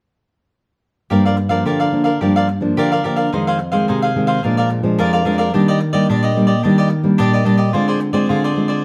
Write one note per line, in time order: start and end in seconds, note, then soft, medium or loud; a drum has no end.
1.10 1.63 G2 medium
1.10 1.37 F3 soft
1.10 1.37 A#3 medium
1.10 1.37 D4 medium
1.10 1.23 G4 soft
1.10 1.23 A#4 soft
1.10 1.24 D5 soft
1.10 1.24 F5 soft
1.25 1.36 A#4 soft
1.25 1.36 D5 medium
1.25 1.36 F5 medium
1.37 muted cavaquinho stroke soft
1.49 1.88 F3 medium
1.49 1.88 A#3 soft
1.49 1.88 D4 medium
1.49 1.64 A#4 soft
1.49 1.64 D5 medium
1.49 1.63 F5 medium
1.66 2.18 D3 medium
1.66 1.78 G4 soft
1.66 1.79 A#4 soft
1.66 1.79 D5 soft
1.66 1.79 F5 medium
1.80 2.04 A#4 soft
1.80 2.04 D5 medium
1.80 2.03 F5 medium
1.92 2.09 F3 medium
1.92 2.09 A#3 medium
1.92 2.10 D4 medium
2.04 2.19 A#4 soft
2.04 2.19 D5 medium
2.04 2.18 F5 medium
2.21 2.74 G2 medium
2.21 2.47 F3 medium
2.21 2.47 A#3 soft
2.21 2.48 D4 medium
2.21 2.34 G4 soft
2.21 2.34 A#4 soft
2.21 2.34 D5 soft
2.21 2.35 F5 soft
2.36 2.48 A#4 medium
2.36 2.48 D5 medium
2.36 2.48 F5 medium
2.48 muted cavaquinho stroke soft
2.61 2.99 F3 medium
2.61 2.99 A#3 medium
2.61 2.99 D4 medium
2.77 3.29 D3 medium
2.77 2.90 G4 medium
2.77 2.90 A#4 medium
2.77 2.90 D5 medium
2.77 2.91 F5 medium
2.92 3.03 A#4 medium
2.92 3.04 D5 medium
2.92 3.04 F5 medium
3.04 3.28 F3 soft
3.04 3.28 A#3 soft
3.04 3.28 D4 medium
3.04 3.17 G4 soft
3.04 3.17 A#4 soft
3.04 3.16 D5 soft
3.04 3.15 F5 soft
3.16 3.31 A#4 medium
3.16 3.30 D5 soft
3.16 3.30 F5 medium
3.32 3.85 F2 medium
3.32 3.58 D#3 soft
3.32 3.59 G#3 soft
3.32 3.59 C4 medium
3.32 3.45 D#4 soft
3.32 3.45 G#4 soft
3.32 3.45 C5 soft
3.32 3.46 F5 soft
3.47 3.58 G#4 medium
3.47 3.58 C5 medium
3.47 3.59 F5 medium
3.59 muted cavaquinho stroke soft
3.72 4.10 D#3 soft
3.72 4.10 G#3 medium
3.72 4.10 C4 medium
3.72 3.86 G#4 medium
3.72 3.86 C5 medium
3.72 3.85 F5 medium
3.88 4.41 C3 medium
3.88 4.00 D#4 soft
3.88 4.01 G#4 soft
3.88 4.01 C5 soft
3.88 4.01 F5 soft
4.02 4.28 G#4 medium
4.02 4.27 C5 medium
4.02 4.26 F5 medium
4.16 4.39 D#3 medium
4.16 4.39 G#3 soft
4.16 4.39 C4 medium
4.27 4.41 G#4 soft
4.27 4.41 C5 medium
4.27 4.41 F5 medium
4.43 4.96 A#2 medium
4.43 4.81 F3 soft
4.43 4.81 G#3 soft
4.43 4.81 D4 medium
4.43 4.55 G#4 soft
4.43 4.56 A#4 soft
4.43 4.56 D5 soft
4.43 4.56 F5 soft
4.57 4.69 A#4 medium
4.57 4.69 D5 medium
4.57 4.69 F5 medium
4.70 muted cavaquinho stroke soft
4.83 5.21 F3 medium
4.83 5.21 G#3 medium
4.83 5.21 D4 medium
4.98 5.51 F2 medium
4.98 5.11 G#4 medium
4.98 5.11 A#4 medium
4.98 5.12 D5 medium
4.98 5.11 F5 medium
5.13 5.25 A#4 soft
5.13 5.25 D5 medium
5.13 5.25 F5 medium
5.25 5.49 F3 soft
5.25 5.49 G#3 medium
5.25 5.49 D4 medium
5.25 5.38 G#4 soft
5.25 5.38 A#4 medium
5.25 5.37 D5 medium
5.25 5.37 F5 soft
5.38 5.52 A#4 medium
5.38 5.51 D5 medium
5.38 5.52 F5 medium
5.54 6.06 D#3 medium
5.54 5.80 G3 medium
5.54 5.80 A#3 soft
5.54 5.66 D4 medium
5.54 5.80 D4 medium
5.54 5.66 G4 soft
5.54 5.67 D5 soft
5.54 5.67 D#5 soft
5.68 5.79 G4 medium
5.68 5.80 D5 medium
5.68 5.80 D#5 medium
5.80 muted cavaquinho stroke soft
5.93 6.31 G3 medium
5.93 6.31 A#3 medium
5.93 6.31 D4 medium
5.93 6.07 G4 medium
5.93 6.06 D5 medium
5.93 6.07 D#5 medium
6.09 6.61 A#2 medium
6.09 6.22 D4 medium
6.09 6.22 G4 soft
6.09 6.21 D5 medium
6.09 6.22 D#5 soft
6.23 6.47 G4 medium
6.23 6.46 D5 medium
6.23 6.47 D#5 medium
6.37 6.53 G3 medium
6.37 6.53 A#3 medium
6.37 6.53 D4 medium
6.47 6.62 G4 soft
6.47 6.61 D5 medium
6.47 6.62 D#5 soft
6.63 7.17 D#3 medium
6.63 6.90 G3 medium
6.63 6.90 A#3 medium
6.63 6.76 D4 soft
6.63 6.91 D4 medium
6.63 6.76 G4 soft
6.63 6.77 D5 soft
6.63 6.77 D#5 soft
6.78 6.89 G4 medium
6.78 6.89 D5 medium
6.78 6.89 D#5 medium
6.90 muted cavaquinho stroke soft
7.04 7.41 G3 medium
7.04 7.42 A#3 medium
7.04 7.42 D4 medium
7.18 7.72 A#2 medium
7.18 7.31 D4 medium
7.18 7.31 G4 medium
7.18 7.32 D5 medium
7.18 7.32 D#5 medium
7.33 7.45 G4 medium
7.33 7.45 D5 medium
7.33 7.45 D#5 medium
7.45 7.69 G3 soft
7.45 7.69 A#3 soft
7.45 7.59 D4 soft
7.45 7.69 D4 medium
7.45 7.58 G4 soft
7.45 7.56 D5 medium
7.45 7.57 D#5 medium
7.57 7.72 G4 medium
7.57 7.72 D5 medium
7.57 7.72 D#5 medium
7.73 8.27 D3 medium
7.73 8.11 G#3 soft
7.73 8.11 C4 soft
7.73 7.86 F4 soft
7.73 8.12 F4 medium
7.73 7.87 G#4 soft
7.73 7.87 C5 medium
7.73 7.87 D5 medium
7.88 7.99 G#4 medium
7.88 8.00 C5 medium
7.88 8.00 D5 medium
8.00 muted cavaquinho stroke soft
8.13 8.51 G#3 medium
8.13 8.52 C4 medium
8.13 8.52 F4 medium
8.13 8.28 G#4 medium
8.13 8.28 C5 medium
8.13 8.27 D5 medium
8.29 8.82 D3 medium
8.29 8.42 F4 soft
8.29 8.42 G#4 soft
8.29 8.43 C5 medium
8.29 8.43 D5 medium
8.44 8.69 G#4 medium
8.44 8.68 C5 medium
8.44 8.67 D5 medium
8.57 8.80 G#3 soft
8.57 8.80 C4 medium
8.57 8.81 F4 medium
8.68 8.83 G#4 soft
8.68 8.83 C5 medium
8.68 8.82 D5 medium